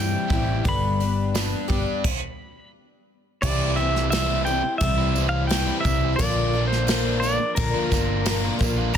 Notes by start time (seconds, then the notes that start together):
Already playing: G2 E3 G3 C4 E4 G4
0.00 G4 G5
0.28 A1 E4 G4, kick, open hi-hat
0.33 C4 E4
0.64 G1 G2 D3 G3 B3 D4 G4 B4 D5, kick, open hi-hat
0.69 B5
1.00 G3 B3 D4 G4, open hi-hat
1.35 G3 B3 D4 G4, snare, open hi-hat, tambourine
1.68 G1 G3 B3 D4 G4, kick, open hi-hat
2.04 kick, crash
3.42 C2 C3 E3 G3 C4 E4 G4 C5 D5 E5, kick, crash, tambourine
3.76 E3 G3 C4 E4 G4 E5
3.81 C4
3.96 snare
4.10 C3 E3 G3 C4 E4 E5, snare, tambourine, crash
4.15 E4 G4
4.28 G3 C4 E4
4.45 E3 G3 C4 E4 G4 G5, tambourine
4.50 C4
4.64 muted overdriven electric guitar stroke
4.78 C2 C3 E5, kick, crash
4.82 G3 C4 E4 G4
4.97 G3 C4 E4
5.15 E3 G3 C4 E4 G4, tambourine
5.29 F5
5.47 C3 E3 G3 C4 G5, snare, tambourine, crash
5.52 G3 C4 E4 G4
5.67 G3 C4 E4, tambourine
5.81 G4 E5
5.85 C2 E3 G3 C4 E4, kick, tambourine
6.03 G3 C4 E4
6.16 A#1 A#2 D3 F3 A#3 F4 A#4 D5, kick, crash
6.20 A#2 D3 A#3 D4 F4 A#4, tambourine
6.53 D3 F3 A#3 D4 A#4
6.57 F4
6.68 C5
6.73 snare
6.87 A#2 D3 F3 A#3 D4 F4 A#4, snare, tambourine, crash
7.05 A#3 D4 F4
7.20 D3 A#3 D4 A#4 D5, tambourine
7.24 F3 A#3 D4 F4
7.39 muted overdriven electric guitar stroke
7.55 A#2 D3 F3 A#3 D4 A#4, kick, crash
7.74 A#3 D4 F4
7.90 G1 D3 A#3 D4 F4 A#4, kick, snare, tambourine
7.94 F3
8.24 A#2 D3 F3 A#3 D4 F4, snare, tambourine, crash
8.29 D4 A#4
8.42 A#3 D4 F4, tambourine
8.59 A#1 D3 F3 A#3 D4 F4 A#4 D5, kick, tambourine
8.77 A#3 D4 F4
8.93 C3 E3 G3 E4, crash